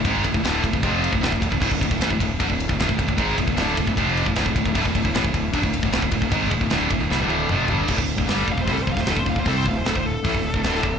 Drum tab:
CC |----------------|x---------------|----------------|----------------|
RD |x-x-x-x-x-x-x-x-|--x-x-x-x-x-x-x-|x-x-x-x-x-x-x-x-|x-x-x-x-x-x-x-x-|
HH |----------------|----------------|----------------|----------------|
SD |----o-------o---|----o-------o---|----o-------o---|----o-------o---|
T1 |----------------|----------------|----------------|----------------|
T2 |----------------|----------------|----------------|----------------|
FT |----------------|----------------|----------------|----------------|
BD |o-oo--ooo--o-ooo|oooo-oo-oo-o-ooo|o-oo--ooo--o-ooo|oooo-oo-oo-o-ooo|

CC |----------------|x---------------|----------------|
RD |x-x-x-x---------|----------------|----------------|
HH |----------------|----o---o---o---|o---o---o---o---|
SD |----o---o-------|----o------oo---|----o-------oo--|
T1 |----------o-----|----------------|----------------|
T2 |------------o---|----------------|----------------|
FT |--------------o-|----------------|----------------|
BD |o-oo--o---------|oo-o--ooo-oo-ooo|o-o--o--oo-o--o-|